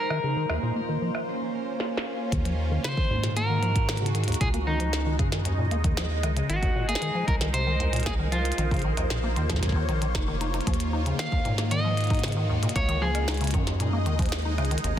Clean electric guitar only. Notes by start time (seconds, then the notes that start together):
Already playing: A#4
2.84 C5
3.37 A#4
4.12 G#4
4.41 G#4
4.67 D#4
6.50 F#4
6.89 G#4
7.28 A#4
7.54 C5
8.06 G#4
8.32 F4
11.20 F5
11.71 D#5
12.76 C#5
13.02 G#4